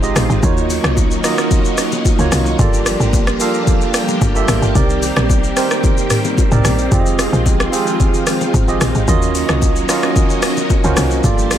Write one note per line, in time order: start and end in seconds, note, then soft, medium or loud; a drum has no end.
0.00 0.12 G#1 loud
0.00 2.55 D#3 medium
0.00 0.41 F3 medium
0.00 0.02 G#3 medium
0.00 0.41 G#3 medium
0.00 0.35 G#3 medium
0.00 0.41 C4 medium
0.00 0.02 D#4 medium
0.00 0.35 D#4 medium
0.00 0.03 F4 medium
0.00 0.41 F4 medium
0.00 0.35 F4 medium
0.00 0.03 G4 medium
0.00 0.35 G4 medium
0.00 0.45 C5 loud
0.00 0.35 D#5 loud
0.00 shaker medium
0.16 0.28 A#1 loud
0.16 cross-stick loud
0.16 open hi-hat medium
0.16 high bongo medium
0.16 low bongo medium
0.16 low conga medium
0.16 shaker loud
0.30 0.41 G#1 medium
0.30 shaker medium
0.42 0.79 D#2 loud
0.42 2.57 F#3 medium
0.42 1.08 A#3 medium
0.42 2.57 A#3 medium
0.42 2.57 C#4 medium
0.42 2.57 D#4 medium
0.42 1.08 D#4 medium
0.42 1.08 F4 medium
0.42 1.09 F#4 medium
0.42 1.09 C#5 medium
0.42 kick loud
0.42 low conga medium
0.42 shaker medium
0.57 shaker medium
0.70 open hi-hat medium
0.70 low bongo medium
0.70 shaker loud
0.84 1.19 C2 medium
0.84 cross-stick loud
0.84 shaker soft
0.97 kick loud
0.97 high bongo medium
0.97 shaker medium
1.11 shaker medium
1.23 1.99 A#3 medium
1.23 2.00 D#4 medium
1.23 2.00 F4 medium
1.23 2.00 F#4 medium
1.23 2.00 D#5 loud
1.23 cross-stick medium
1.23 open hi-hat medium
1.23 shaker loud
1.38 cross-stick medium
1.38 shaker medium
1.51 kick loud
1.51 high bongo medium
1.51 low conga medium
1.51 shaker medium
1.65 shaker medium
1.78 cross-stick medium
1.78 open hi-hat medium
1.78 shaker loud
1.92 low bongo medium
1.92 shaker medium
2.05 kick loud
2.05 high bongo medium
2.05 shaker medium
2.18 2.30 C#2 medium
2.18 2.51 A#3 medium
2.18 2.51 D#4 medium
2.18 2.51 F4 medium
2.18 2.52 F#4 medium
2.18 2.52 C#5 loud
2.18 shaker medium
2.32 2.56 C2 medium
2.32 cross-stick loud
2.32 open hi-hat medium
2.32 high bongo medium
2.32 low bongo medium
2.32 low conga medium
2.32 shaker loud
2.46 shaker medium
2.59 2.95 G1 loud
2.59 4.73 F3 medium
2.59 6.87 G3 medium
2.59 3.24 A#3 medium
2.59 4.73 A#3 medium
2.59 4.73 D4 medium
2.59 3.24 F4 medium
2.59 6.87 G4 medium
2.59 3.25 G4 medium
2.59 3.25 A4 medium
2.59 3.25 D5 loud
2.59 kick loud
2.59 low conga medium
2.59 shaker medium
2.73 shaker medium
2.86 cross-stick loud
2.86 open hi-hat medium
2.86 low bongo medium
2.86 shaker loud
3.00 3.35 G#1 medium
3.00 shaker medium
3.13 kick loud
3.13 high bongo medium
3.13 shaker medium
3.27 cross-stick loud
3.27 shaker medium
3.40 4.16 A#3 medium
3.40 4.16 F4 medium
3.40 4.16 G4 medium
3.40 4.16 A4 medium
3.40 4.17 F5 loud
3.40 open hi-hat medium
3.40 shaker loud
3.54 shaker medium
3.67 kick loud
3.67 high bongo medium
3.67 low conga medium
3.67 shaker medium
3.81 shaker medium
3.94 cross-stick loud
3.94 open hi-hat medium
3.94 shaker loud
4.08 low bongo medium
4.08 shaker medium
4.21 4.45 G1 loud
4.21 kick loud
4.21 high bongo medium
4.21 shaker medium
4.35 4.67 A#3 medium
4.35 4.67 F4 medium
4.35 4.68 G4 medium
4.35 4.68 A4 medium
4.35 4.68 E5 loud
4.35 shaker medium
4.48 4.61 G#1 medium
4.48 cross-stick loud
4.48 open hi-hat medium
4.48 high bongo medium
4.48 low bongo medium
4.48 low conga medium
4.48 shaker loud
4.62 4.74 G1 medium
4.62 shaker medium
4.75 5.11 C2 loud
4.75 11.20 D#3 medium
4.75 6.89 A#3 medium
4.75 5.40 C4 medium
4.75 9.04 C4 medium
4.75 5.40 D#4 medium
4.75 5.41 G4 medium
4.75 5.41 A#4 medium
4.75 5.41 D5 loud
4.75 kick loud
4.75 low conga medium
4.75 shaker medium
4.90 shaker medium
5.02 open hi-hat medium
5.02 low bongo medium
5.02 shaker loud
5.16 5.51 A#1 medium
5.16 cross-stick loud
5.16 low bongo medium
5.16 shaker medium
5.29 kick loud
5.29 high bongo medium
5.29 shaker medium
5.44 shaker medium
5.56 6.32 C4 medium
5.56 6.32 D#4 medium
5.56 6.32 G4 medium
5.56 6.33 A#4 medium
5.56 6.33 C5 loud
5.56 cross-stick medium
5.56 open hi-hat medium
5.56 shaker loud
5.70 cross-stick loud
5.70 shaker medium
5.83 kick loud
5.83 high bongo medium
5.83 low conga medium
5.83 shaker medium
5.97 shaker medium
6.10 cross-stick medium
6.10 mid tom medium
6.10 open hi-hat medium
6.10 shaker loud
6.25 low bongo medium
6.25 shaker medium
6.38 kick loud
6.38 high bongo medium
6.38 shaker medium
6.51 6.63 C2 medium
6.51 6.84 C4 medium
6.51 6.84 D#4 medium
6.51 6.84 G4 medium
6.51 6.84 A#4 medium
6.51 6.84 D5 loud
6.51 mid tom medium
6.51 shaker medium
6.65 6.88 A#1 medium
6.65 cross-stick loud
6.65 open hi-hat medium
6.65 high bongo medium
6.65 low bongo medium
6.65 low conga medium
6.65 shaker loud
6.79 shaker medium
6.91 7.27 F1 loud
6.91 9.06 F3 medium
6.91 9.06 G#3 medium
6.91 7.57 C4 medium
6.91 7.57 F4 medium
6.91 9.06 F4 medium
6.91 7.57 G4 medium
6.91 7.57 G#4 medium
6.91 6.99 D5 medium
6.91 kick loud
6.91 low conga medium
6.91 shaker medium
6.99 7.61 D#5 medium
7.06 shaker medium
7.19 cross-stick loud
7.19 open hi-hat medium
7.19 low bongo medium
7.19 shaker loud
7.33 7.68 A#1 medium
7.33 shaker medium
7.46 kick medium
7.46 high bongo medium
7.46 shaker medium
7.60 cross-stick loud
7.60 shaker medium
7.72 8.48 C4 medium
7.72 8.49 F4 medium
7.72 8.49 G4 medium
7.72 8.49 G#4 medium
7.72 8.49 C5 loud
7.72 open hi-hat medium
7.72 shaker medium
7.87 shaker medium
8.00 kick loud
8.00 high bongo medium
8.00 low conga medium
8.00 shaker medium
8.14 shaker medium
8.27 cross-stick medium
8.27 open hi-hat medium
8.27 shaker loud
8.41 low bongo medium
8.41 shaker medium
8.54 8.77 G#1 loud
8.54 kick loud
8.54 high bongo medium
8.54 shaker medium
8.68 9.00 C4 medium
8.68 9.00 F4 medium
8.68 9.00 G4 medium
8.68 9.00 G#4 medium
8.68 9.01 D#5 loud
8.68 shaker medium
8.81 8.93 A#1 medium
8.81 cross-stick loud
8.81 open hi-hat medium
8.81 high bongo medium
8.81 low bongo medium
8.81 low conga medium
8.81 shaker loud
8.95 9.06 G#1 medium
8.95 shaker medium
9.07 9.44 D#2 loud
9.07 11.22 F#3 medium
9.07 11.22 A#3 medium
9.07 9.73 C#4 medium
9.07 11.22 C#4 medium
9.07 11.22 D#4 medium
9.07 9.73 F4 medium
9.07 9.73 F#4 medium
9.07 9.73 A#4 medium
9.07 9.74 D#5 loud
9.07 kick loud
9.07 low conga medium
9.07 shaker medium
9.22 shaker medium
9.35 open hi-hat medium
9.35 low bongo medium
9.35 shaker medium
9.49 9.84 C2 medium
9.49 cross-stick loud
9.49 shaker medium
9.62 kick medium
9.62 high bongo medium
9.62 shaker medium
9.76 shaker medium
9.88 10.64 C#4 medium
9.88 10.65 F4 medium
9.88 10.65 F#4 medium
9.88 10.65 A#4 medium
9.88 10.65 D#5 loud
9.88 cross-stick medium
9.88 open hi-hat medium
9.88 shaker loud
10.03 cross-stick medium
10.03 shaker medium
10.16 kick loud
10.16 high bongo medium
10.16 low conga medium
10.16 shaker medium
10.30 shaker medium
10.42 cross-stick loud
10.42 open hi-hat medium
10.42 shaker loud
10.57 low bongo medium
10.57 shaker medium
10.70 kick loud
10.70 high bongo medium
10.70 shaker medium
10.84 10.95 C#2 medium
10.84 11.16 C#4 medium
10.84 11.16 F4 medium
10.84 11.16 F#4 medium
10.84 11.17 A#4 medium
10.84 11.17 C5 loud
10.84 shaker medium
10.97 11.21 C2 medium
10.97 cross-stick loud
10.97 open hi-hat medium
10.97 high bongo medium
10.97 low bongo medium
10.97 low conga medium
10.97 shaker loud
11.11 shaker medium
11.24 11.58 G1 loud
11.24 11.58 F3 medium
11.24 11.58 G3 medium
11.24 11.58 A#3 medium
11.24 11.58 D4 medium
11.24 11.58 F4 medium
11.24 11.58 G4 medium
11.24 11.58 A4 medium
11.24 11.58 D5 loud
11.24 kick loud
11.24 low conga medium
11.24 shaker medium
11.38 shaker medium
11.51 cross-stick medium
11.51 open hi-hat medium
11.51 low bongo medium
11.51 shaker loud